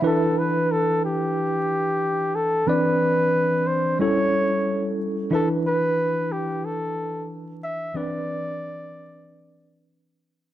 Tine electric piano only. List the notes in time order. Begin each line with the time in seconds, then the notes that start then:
Already playing: E5
0.02 E3 D4 E4 B4
2.67 E3 C4 D4 D5
3.99 G3 C#4 E4 A4
5.30 E3 D4 E4 B4
7.94 E3 C4 D4 B4